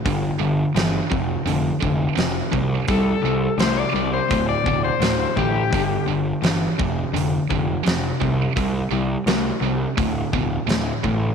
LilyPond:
<<
  \new Staff \with { instrumentName = "Overdriven electric guitar" } { \time 4/4 \key f \lydian \tempo 4 = 85 r1 | a'4 c''16 d''8 c''8 d''8 c''8. g'8~ | g'8 r2. r8 | r1 | }
  \new Staff \with { instrumentName = "Distorted electric guitar" } { \clef bass \time 4/4 \key f \lydian <g, d>8 <g, d>8 <g, e>8 <f, c>8 <f, d>8 <f, d>8 <f, c>8 <f, c>8 | <c g>8 <c g>8 <c a>8 <c g>8 <d, a,>8 <d, b,>8 <d, a,>8 <d, a,>8 | <g, d>8 <g, d>8 <g, e>8 <f, c>8 <f, d>8 <f, d>8 <f, c>8 <f, c>8 | <c g>8 <c g>8 <c a>8 <c g>8 <d, a,>8 <d, b,>8 <d, a,>8 <d, a,>8 | }
  \new Staff \with { instrumentName = "Overdriven electric guitar" } { \clef bass \time 4/4 \key f \lydian <g, d>8 <g, d>8 <g, e>8 <f, c>8 <f, d>8 <f, d>8 <f, c>8 <f, c>8 | <c g>8 <c g>8 <c a>8 <c g>8 <d, a,>8 <d, b,>8 <d, a,>8 <d, a,>8 | <g, d>8 <g, d>8 <g, e>8 <f, c>8 <f, d>8 <f, d>8 <f, c>8 <f, c>8 | <c g>8 <c g>8 <c a>8 <c g>8 <d, a,>8 <d, b,>8 <d, a,>8 <d, a,>8 | }
  \new Staff \with { instrumentName = "Picked electric bass" } { \clef bass \time 4/4 \key f \lydian g,,8 g,,8 g,,8 f,,8 f,,8 f,,8 f,,8 c,8 | c,8 c,8 c,8 c,8 d,,8 d,,8 d,,8 a,,8 | g,,8 g,,8 g,,8 f,,8 f,,8 f,,8 f,,8 c,8 | c,8 c,8 c,8 c,8 d,,8 d,,8 d,,8 a,,8 | }
  \new DrumStaff \with { instrumentName = "Drums" } \drummode { \time 4/4 <hho bd>4 <hho sn>8 bd8 hho8 bd8 <hho sn>8 bd8 | <hho bd>4 <hho sn>4 <hho bd>8 bd8 <hho sn>8 bd8 | <hho bd>4 <hho sn>8 bd8 hho8 bd8 <hho sn>8 bd8 | <hho bd>4 <hho sn>4 <hho bd>8 bd8 <hho sn>8 bd8 | }
>>